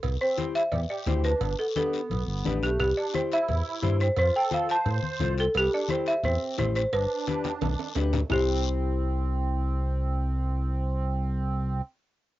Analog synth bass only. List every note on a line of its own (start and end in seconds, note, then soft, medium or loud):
0.03 0.17 C2 medium
0.72 0.86 E2 medium
1.06 1.34 D2 loud
1.41 1.55 G1 medium
2.10 2.24 B1 medium
2.27 2.43 G1 medium
2.45 2.61 A1 medium
2.62 2.78 B1 medium
2.79 2.93 C2 loud
3.49 3.62 E2 medium
3.83 4.10 G2 loud
4.17 4.31 F2 loud
4.86 5.00 A2 medium
5.20 5.48 C2 loud
5.55 5.69 C2 loud
6.24 6.38 E2 medium
6.59 6.86 A1 loud
6.93 7.07 G1 loud
7.62 7.76 B1 medium
7.96 8.24 D2 loud
8.30 11.81 C2 loud